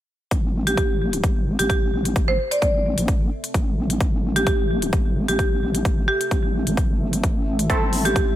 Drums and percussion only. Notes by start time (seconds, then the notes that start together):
0.31 kick, closed hi-hat
0.67 closed hi-hat
0.77 kick, closed hi-hat
1.13 closed hi-hat
1.24 kick, closed hi-hat
1.59 closed hi-hat
1.70 kick, closed hi-hat
2.05 closed hi-hat
2.16 kick, closed hi-hat
2.52 closed hi-hat
2.62 kick, closed hi-hat
2.98 closed hi-hat
3.08 kick, closed hi-hat
3.44 closed hi-hat
3.54 kick, closed hi-hat
3.90 closed hi-hat
4.00 kick, closed hi-hat
4.36 closed hi-hat
4.47 kick, closed hi-hat
4.82 closed hi-hat
4.93 kick, closed hi-hat
5.28 closed hi-hat
5.39 kick, closed hi-hat
5.75 closed hi-hat
5.85 kick, closed hi-hat
6.21 closed hi-hat
6.31 kick, closed hi-hat
6.67 closed hi-hat
6.77 kick, closed hi-hat
7.13 closed hi-hat
7.24 kick, closed hi-hat
7.59 closed hi-hat
7.70 kick, closed hi-hat
7.93 open hi-hat
8.05 closed hi-hat
8.16 kick, closed hi-hat